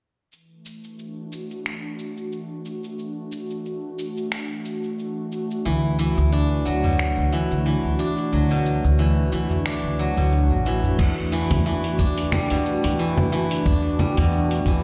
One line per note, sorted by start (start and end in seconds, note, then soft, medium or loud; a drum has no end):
0.31 14.83 E3 medium
0.31 cabasa soft
0.48 14.83 A3 medium
0.66 cabasa medium
0.81 14.83 D4 medium
0.81 cabasa soft
0.93 14.83 F#4 medium
0.99 cabasa soft
1.32 cabasa medium
1.51 cabasa soft
1.66 finger snap medium
1.66 cabasa soft
1.99 cabasa medium
2.17 cabasa soft
2.32 cabasa soft
2.65 cabasa medium
2.84 cabasa soft
2.99 cabasa soft
3.32 cabasa medium
3.50 cabasa soft
3.66 cabasa soft
3.99 cabasa medium
4.17 cabasa soft
4.32 finger snap medium
4.32 cabasa soft
4.65 cabasa medium
4.84 cabasa soft
4.99 cabasa soft
5.32 cabasa medium
5.51 cabasa soft
5.65 6.08 D2 medium
5.65 5.97 E3 medium
5.65 cabasa soft
5.99 6.87 E3 medium
5.99 cabasa medium
6.17 6.58 D2 loud
6.17 cabasa soft
6.32 7.98 D4 medium
6.32 cabasa soft
6.65 7.09 D2 medium
6.65 8.31 F#3 medium
6.65 cabasa medium
6.84 8.50 B2 medium
6.84 udu medium
6.84 cabasa soft
6.99 finger snap medium
6.99 cabasa soft
7.18 7.40 D2 medium
7.32 7.65 E3 medium
7.32 cabasa medium
7.51 7.73 D2 medium
7.51 cabasa soft
7.66 8.54 E3 medium
7.66 cabasa soft
7.84 7.95 D2 medium
7.99 9.65 D4 medium
7.99 cabasa medium
8.18 cabasa soft
8.32 8.75 D2 medium
8.32 9.98 F#3 medium
8.32 cabasa soft
8.51 10.16 B2 medium
8.66 cabasa medium
8.84 9.25 D2 loud
8.84 cabasa soft
8.99 9.31 E3 medium
8.99 cabasa soft
9.32 9.75 D2 medium
9.32 10.21 E3 medium
9.32 cabasa medium
9.50 udu loud
9.50 cabasa soft
9.66 11.98 D4 loud
9.66 finger snap medium
9.66 cabasa soft
9.84 10.06 D2 medium
9.99 11.04 F#3 medium
9.99 cabasa medium
10.17 10.51 D2 medium
10.17 11.04 B2 medium
10.17 cabasa soft
10.32 cabasa soft
10.50 10.92 A1 medium
10.50 udu medium
10.66 11.04 E3 medium
10.66 cabasa medium
10.83 udu medium
10.83 cabasa soft
10.99 11.42 E2 medium
10.99 kick loud
10.99 crash medium
10.99 cabasa soft
11.32 11.65 E3 medium
11.32 cabasa medium
11.50 11.92 E2 medium
11.50 open hi-hat medium
11.50 low conga medium
11.50 cabasa soft
11.66 12.54 E3 medium
11.66 cabasa soft
11.84 open hi-hat soft
11.99 12.42 E2 medium
11.99 13.66 D4 medium
11.99 kick loud
11.99 cabasa medium
12.18 open hi-hat medium
12.18 cabasa soft
12.32 13.98 G3 medium
12.32 finger snap medium
12.32 low conga medium
12.32 cabasa soft
12.50 12.73 E2 medium
12.50 14.16 B2 medium
12.50 open hi-hat soft
12.66 cabasa medium
12.84 13.06 E2 medium
12.84 open hi-hat medium
12.84 cabasa soft
12.99 13.31 E3 medium
12.99 cabasa soft
13.18 13.28 E2 medium
13.18 low conga medium
13.32 14.21 E3 medium
13.32 cabasa medium
13.51 open hi-hat medium
13.51 cabasa soft
13.66 14.08 E2 medium
13.66 14.83 D4 medium
13.66 kick loud
13.66 cabasa soft
13.99 14.83 G3 medium
13.99 low conga medium
13.99 cabasa medium
14.17 14.59 E2 loud
14.17 14.83 B2 medium
14.17 open hi-hat medium
14.17 cabasa soft
14.33 cabasa soft
14.51 open hi-hat soft
14.66 14.83 E2 medium
14.66 14.83 E3 medium
14.66 kick loud
14.66 cabasa medium